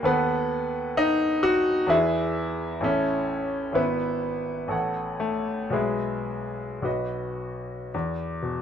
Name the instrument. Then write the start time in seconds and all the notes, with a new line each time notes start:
upright piano
0.03 D#2 B3 A4 B4 F#5
0.97 D#4
1.43 F#4
1.87 E2 E4 G#4 B4 E5
2.80 A1 C#4 E4 A4 E5
3.72 G#1 B3 E4 B4 E5
4.68 A1 A4 C#5 F#5
5.20 A3
5.70 B1 G#3 G#4 B4 E5
6.82 B1 F#4 B4 D#5
7.94 E2
8.42 B2